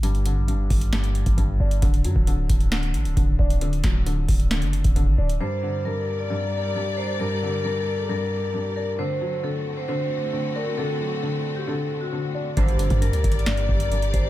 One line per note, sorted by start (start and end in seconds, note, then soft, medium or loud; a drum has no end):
0.00 0.38 G1 loud
0.00 0.46 G2 medium
0.00 closed hi-hat medium
0.15 closed hi-hat soft
0.26 1.38 D3 medium
0.26 closed hi-hat medium
0.37 0.55 A1 loud
0.48 0.91 G2 medium
0.48 closed hi-hat medium
0.54 0.70 G1 loud
0.70 1.24 G1 loud
0.70 kick medium
0.70 open hi-hat medium
0.81 closed hi-hat medium
0.93 1.36 G2 medium
0.93 snare loud
0.93 closed hi-hat medium
1.04 closed hi-hat medium
1.15 closed hi-hat medium
1.26 1.37 G1 loud
1.26 kick loud
1.26 closed hi-hat medium
1.38 1.59 G1 loud
1.38 1.82 G2 medium
1.38 kick medium
1.38 closed hi-hat medium
1.60 1.81 G1 loud
1.60 1.82 D4 medium
1.71 closed hi-hat medium
1.82 2.06 D1 loud
1.82 2.26 D3 loud
1.82 kick loud
1.82 closed hi-hat medium
1.94 closed hi-hat soft
2.04 2.15 F#2 loud
2.04 3.17 F#3 medium
2.04 closed hi-hat medium
2.16 2.48 D1 loud
2.16 kick medium
2.27 2.71 D3 medium
2.27 closed hi-hat medium
2.49 2.96 D1 loud
2.49 kick medium
2.49 closed hi-hat medium
2.60 closed hi-hat medium
2.72 3.15 D3 loud
2.72 snare loud
2.72 closed hi-hat medium
2.83 closed hi-hat medium
2.94 3.07 A1 loud
2.94 closed hi-hat medium
3.05 3.16 D1 loud
3.05 closed hi-hat medium
3.17 3.38 D1 loud
3.17 3.60 D3 medium
3.17 kick medium
3.17 closed hi-hat medium
3.39 3.82 D1 loud
3.39 4.51 D4 medium
3.39 kick medium
3.50 closed hi-hat medium
3.61 4.05 D3 medium
3.61 closed hi-hat medium
3.73 closed hi-hat soft
3.84 4.27 D1 loud
3.84 4.96 F#3 medium
3.84 kick medium
3.84 snare medium
3.84 closed hi-hat medium
4.06 4.50 D3 medium
4.06 closed hi-hat medium
4.29 4.64 D1 loud
4.29 kick medium
4.29 open hi-hat medium
4.40 closed hi-hat medium
4.51 4.94 D3 medium
4.51 snare loud
4.51 closed hi-hat medium
4.62 4.83 F#1 loud
4.62 closed hi-hat soft
4.73 closed hi-hat medium
4.84 5.08 D1 loud
4.84 kick loud
4.84 closed hi-hat medium
4.96 5.41 D3 medium
4.96 kick medium
4.96 closed hi-hat medium
5.07 5.18 A1 loud
5.18 5.40 D1 loud
5.18 5.40 D4 medium
5.29 closed hi-hat medium
5.40 5.84 G2 loud
5.40 8.95 G3 medium
5.40 8.95 G4 medium
5.40 8.95 A#4 medium
5.40 5.83 C5 loud
5.40 8.95 D5 medium
5.63 6.75 D3 medium
5.85 6.29 G2 medium
5.85 6.17 A#4 medium
6.19 6.28 D5 medium
6.30 6.74 G2 medium
6.30 6.93 D5 medium
6.75 7.18 G2 medium
6.97 8.09 D4 medium
6.97 7.15 C5 medium
7.20 7.63 G2 medium
7.20 7.62 A#4 medium
7.42 8.54 D3 medium
7.64 8.08 G2 medium
7.64 7.96 A#4 medium
7.98 8.07 A4 medium
8.09 8.52 G2 medium
8.09 8.72 A#4 medium
8.54 8.99 G2 medium
8.76 8.99 D4 medium
8.76 8.94 A#4 medium
8.99 9.42 D3 loud
8.99 12.53 D3 medium
8.99 12.53 A3 medium
8.99 12.53 C4 medium
8.99 12.53 F#4 medium
8.99 9.41 C5 loud
9.21 10.33 F#3 medium
9.43 9.87 D3 medium
9.43 9.75 A4 medium
9.77 9.86 C5 medium
9.88 10.31 D3 loud
9.88 10.51 C5 loud
10.33 10.76 D3 medium
10.55 11.67 D4 medium
10.55 10.73 A#4 medium
10.78 11.21 D3 medium
10.78 11.20 A4 loud
11.00 12.12 F#3 medium
11.22 11.66 D3 medium
11.22 11.54 A4 medium
11.56 11.65 G4 medium
11.68 12.11 D3 loud
11.68 11.99 A4 medium
12.01 12.53 F#4 medium
12.12 12.57 D3 medium
12.34 12.57 D4 medium
12.57 12.89 G1 loud
12.57 12.99 A#1 loud
12.57 13.00 G2 loud
12.57 12.99 G2 loud
12.57 12.99 D3 loud
12.57 14.30 G3 medium
12.57 14.30 G4 medium
12.57 14.30 A#4 medium
12.57 12.99 C5 loud
12.57 14.30 D5 medium
12.57 kick loud
12.57 closed hi-hat loud
12.68 closed hi-hat soft
12.79 13.91 D3 medium
12.79 closed hi-hat medium
12.90 13.14 G2 loud
12.90 kick medium
12.90 closed hi-hat medium
13.02 13.45 G2 medium
13.02 13.33 A#4 medium
13.02 closed hi-hat medium
13.13 13.24 D2 loud
13.13 closed hi-hat medium
13.24 13.67 G1 loud
13.24 kick loud
13.24 closed hi-hat medium
13.32 13.44 D5 medium
13.32 closed hi-hat medium
13.39 closed hi-hat medium
13.46 13.90 G2 medium
13.46 14.10 D5 medium
13.46 snare loud
13.46 closed hi-hat medium
13.57 closed hi-hat medium
13.69 14.12 G1 loud
13.69 kick loud
13.80 closed hi-hat medium
13.91 14.30 G2 medium
13.91 closed hi-hat medium
14.02 closed hi-hat medium
14.13 14.30 G1 loud
14.13 14.30 D4 medium
14.13 14.30 C5 medium
14.13 kick medium
14.13 closed hi-hat medium